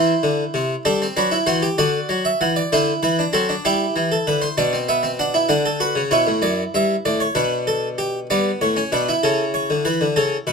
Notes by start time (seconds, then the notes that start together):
Already playing: E3 E4 C5
0.23 D3
0.54 C3
0.85 G3 D4 A4
1.02 C4
1.17 F#3 D4 B4
1.31 E4
1.47 E3 F#4 C5
1.62 G4
1.78 D3 F#4 D5
2.09 F#3
2.25 E5
2.41 E3 F#5
2.56 D5
2.72 D3 E4 C5
3.03 E3 B4
3.19 D4
3.33 F#3 C4 A4
3.49 D4
3.65 G3 E4 G4
3.96 E3
4.12 A4
4.27 D3 B4
4.42 C5
4.58 B2 D4 D5
4.73 C4
4.88 B3 E5
5.03 C4
5.19 D4 F#5
5.34 E4
5.49 D3 D4 F#5
5.66 A4
5.80 F#4 B4
5.95 C#3
6.11 B2 E4 C#5
6.27 A2
6.42 F#2 D5
6.74 G2 E5
7.05 A2 D5
7.20 C#5
7.35 B2 D4 B4
7.67 A4
7.98 G4
8.30 G2 B3 D5
8.61 A2 C#5
8.77 C#4
8.92 B2 D4 B4
9.09 E4
9.23 C#3 A4
9.54 C#5
9.70 D3
9.85 E3 B4
10.01 D3
10.16 C#3 A4
10.47 B2 B4